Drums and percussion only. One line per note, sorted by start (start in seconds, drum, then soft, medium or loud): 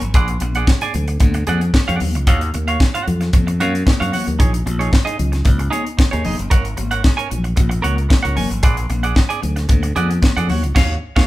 0.02 closed hi-hat soft
0.14 kick loud
0.14 closed hi-hat medium
0.28 closed hi-hat soft
0.28 muted conga soft
0.40 closed hi-hat medium
0.40 high conga medium
0.55 closed hi-hat soft
0.67 kick loud
0.67 snare loud
0.81 closed hi-hat soft
0.81 muted conga soft
0.94 closed hi-hat medium
0.94 low conga medium
1.08 closed hi-hat soft
1.20 kick loud
1.20 closed hi-hat medium
1.20 high conga medium
1.34 closed hi-hat soft
1.47 closed hi-hat medium
1.47 high conga medium
1.61 closed hi-hat soft
1.74 kick loud
1.74 snare loud
1.74 high conga medium
1.88 closed hi-hat soft
1.88 muted conga soft
2.00 open hi-hat medium
2.00 high conga medium
2.00 low conga medium
2.15 closed hi-hat soft
2.27 kick loud
2.27 closed hi-hat medium
2.27 muted conga soft
2.41 closed hi-hat soft
2.54 closed hi-hat medium
2.54 high conga medium
2.68 closed hi-hat soft
2.80 kick loud
2.80 snare medium
2.95 closed hi-hat soft
2.95 muted conga soft
3.07 closed hi-hat medium
3.07 low conga medium
3.21 snare soft
3.21 closed hi-hat soft
3.33 kick loud
3.33 closed hi-hat medium
3.33 high conga medium
3.48 closed hi-hat soft
3.48 muted conga soft
3.60 closed hi-hat medium
3.60 high conga medium
3.75 closed hi-hat soft
3.87 kick loud
3.87 snare loud
3.87 muted conga soft
3.87 high conga medium
4.01 closed hi-hat soft
4.01 muted conga soft
4.13 open hi-hat medium
4.13 high conga medium
4.13 low conga medium
4.27 closed hi-hat soft
4.27 low conga medium
4.40 kick loud
4.40 closed hi-hat medium
4.54 closed hi-hat medium
4.66 closed hi-hat medium
4.66 high conga medium
4.81 closed hi-hat soft
4.92 kick loud
4.92 snare medium
4.92 muted conga soft
5.07 closed hi-hat soft
5.07 muted conga soft
5.19 closed hi-hat medium
5.19 low conga medium
5.33 snare soft
5.33 closed hi-hat soft
5.45 kick loud
5.45 closed hi-hat medium
5.45 high conga medium
5.59 closed hi-hat soft
5.72 closed hi-hat medium
5.72 high conga medium
5.87 closed hi-hat soft
5.98 kick loud
5.98 snare loud
5.98 high conga medium
6.13 closed hi-hat soft
6.13 muted conga soft
6.25 open hi-hat medium
6.25 high conga medium
6.25 low conga medium
6.39 closed hi-hat soft
6.51 kick loud
6.51 closed hi-hat medium
6.51 muted conga soft
6.65 closed hi-hat soft
6.77 closed hi-hat medium
6.77 high conga medium
6.91 closed hi-hat soft
7.04 kick loud
7.04 snare loud
7.19 closed hi-hat soft
7.31 closed hi-hat medium
7.31 low conga medium
7.44 closed hi-hat soft
7.57 kick loud
7.57 closed hi-hat medium
7.57 muted conga soft
7.57 high conga medium
7.71 closed hi-hat soft
7.71 muted conga soft
7.84 closed hi-hat medium
7.84 high conga medium
7.98 closed hi-hat soft
8.10 kick loud
8.10 snare loud
8.10 high conga medium
8.25 closed hi-hat soft
8.36 open hi-hat medium
8.36 high conga medium
8.36 low conga medium
8.51 closed hi-hat soft
8.63 kick loud
8.63 closed hi-hat medium
8.77 closed hi-hat soft
8.90 closed hi-hat medium
8.90 high conga medium
9.04 closed hi-hat soft
9.15 kick loud
9.15 snare medium
9.15 muted conga soft
9.30 closed hi-hat soft
9.43 closed hi-hat medium
9.43 low conga medium
9.56 snare soft
9.56 closed hi-hat soft
9.69 kick loud
9.69 closed hi-hat medium
9.69 muted conga soft
9.69 high conga medium
9.83 closed hi-hat soft
9.83 muted conga soft
9.96 closed hi-hat medium
9.96 high conga medium
10.11 closed hi-hat soft
10.22 kick loud
10.22 snare loud
10.22 muted conga soft
10.22 high conga medium
10.37 closed hi-hat soft
10.49 open hi-hat medium
10.49 high conga medium
10.49 low conga medium
10.64 closed hi-hat soft
10.76 kick loud
10.76 snare loud
10.76 crash medium
11.16 kick loud
11.16 snare medium